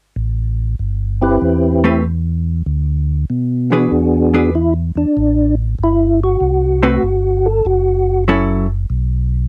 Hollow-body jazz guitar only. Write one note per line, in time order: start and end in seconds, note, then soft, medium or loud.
1.84 2.03 A3 medium
1.84 2.03 C4 medium
1.84 2.03 G4 medium
1.84 2.03 B4 medium
3.72 3.90 E3 medium
3.72 3.90 D4 soft
3.72 3.91 G#4 soft
3.72 3.91 B4 medium
4.34 4.52 E3 soft
4.34 4.53 D4 medium
4.34 4.53 G#4 medium
4.34 4.53 B4 medium
6.83 7.01 A3 medium
6.83 7.01 C4 medium
6.83 7.02 F#4 medium
6.83 7.02 B4 medium
8.28 8.65 F#3 medium
8.28 8.66 C#4 medium
8.28 8.66 E4 medium
8.28 8.66 A4 medium